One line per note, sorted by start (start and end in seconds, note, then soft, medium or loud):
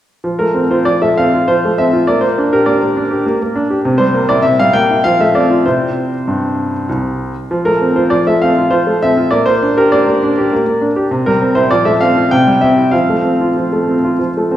0.24 0.85 F3 soft
0.39 0.63 A3 soft
0.39 0.69 A#4 medium
0.54 0.78 C4 soft
0.71 0.94 F4 soft
0.71 0.85 C5 medium
0.85 1.47 F3 soft
0.85 1.00 D5 medium
1.02 1.25 A3 soft
1.02 1.16 E5 medium
1.17 1.41 C4 soft
1.17 1.46 F5 medium
1.34 1.56 F4 soft
1.48 2.05 F3 soft
1.48 1.76 C5 medium
1.65 1.86 A3 soft
1.78 2.01 C4 soft
1.78 2.06 E5 medium
1.93 2.06 F4 soft
2.07 2.21 A#3 soft
2.07 2.21 D5 medium
2.21 2.45 A#3 soft
2.21 2.50 C5 medium
2.38 2.60 D4 soft
2.53 2.75 G4 soft
2.53 2.66 A#4 medium
2.66 2.81 A#3 soft
2.66 3.54 D5 medium
2.82 3.04 A#3 soft
2.97 3.19 D4 soft
3.11 3.33 G4 soft
3.26 3.41 A#3 soft
3.42 3.64 A#3 soft
3.56 3.78 D4 soft
3.70 3.84 G4 soft
3.85 4.42 C3 medium
3.98 4.22 G3 soft
3.98 4.27 C5 medium
4.14 4.37 A#3 soft
4.29 4.52 E4 soft
4.29 4.43 D5 medium
4.42 5.01 C3 soft
4.42 4.57 E5 medium
4.59 4.82 G3 soft
4.59 4.73 F5 medium
4.73 4.97 A#3 soft
4.73 5.03 G5 medium
4.90 5.04 E4 soft
5.04 5.63 F3 medium
5.04 5.18 F5 medium
5.20 5.43 A3 soft
5.20 5.34 E5 medium
5.35 5.59 C4 soft
5.35 5.64 D5 medium
5.50 5.64 F4 soft
5.66 6.09 C3 soft
5.66 6.15 C4 soft
5.66 6.15 E4 soft
5.66 6.88 C5 medium
6.28 6.70 G2 soft
6.89 7.32 C2 soft
7.51 8.10 F3 soft
7.65 7.90 A3 soft
7.65 7.96 A#4 medium
7.81 8.05 C4 soft
7.96 8.20 F4 soft
7.96 8.11 C5 medium
8.10 8.70 F3 soft
8.10 8.26 D5 medium
8.27 8.51 A3 soft
8.27 8.42 E5 medium
8.42 8.66 C4 soft
8.42 8.72 F5 medium
8.58 8.81 F4 soft
8.71 9.29 F3 soft
8.71 9.01 C5 medium
8.87 9.11 A3 soft
9.02 9.26 C4 soft
9.02 9.32 E5 medium
9.17 9.32 F4 soft
9.31 9.45 A#3 soft
9.31 9.46 D5 medium
9.46 9.71 A#3 soft
9.46 9.76 C5 medium
9.62 9.86 D4 soft
9.77 10.01 G4 soft
9.77 9.92 A#4 medium
9.92 10.05 A#3 soft
9.92 10.81 D5 medium
10.07 10.31 A#3 soft
10.23 10.46 D4 soft
10.38 10.61 G4 soft
10.53 10.65 A#3 soft
10.67 10.90 A#3 soft
10.82 11.05 D4 soft
10.96 11.11 G4 soft
11.11 11.68 C3 medium
11.26 11.50 G3 soft
11.26 11.55 A#4 medium
11.41 11.64 C4 soft
11.55 11.70 E4 soft
11.55 11.70 C5 medium
11.71 12.30 F3 soft
11.71 11.85 D5 medium
11.85 12.09 A3 soft
11.85 12.00 E5 medium
12.01 12.25 C4 soft
12.01 12.31 F5 medium
12.17 12.31 F4 soft
12.31 12.92 C3 medium
12.31 12.62 G5 medium
12.47 12.72 G3 soft
12.61 12.87 C4 soft
12.61 12.93 E5 medium
12.78 12.93 E4 soft
12.91 13.55 F3 soft
12.91 14.18 F5 medium
13.10 13.34 A3 soft
13.25 13.50 C4 soft
13.41 13.66 F4 soft
13.57 14.18 F3 soft
13.73 13.97 A3 soft
13.89 14.13 C4 soft
14.05 14.29 F4 soft
14.19 14.57 F3 soft
14.37 14.57 A3 soft
14.51 14.57 C4 soft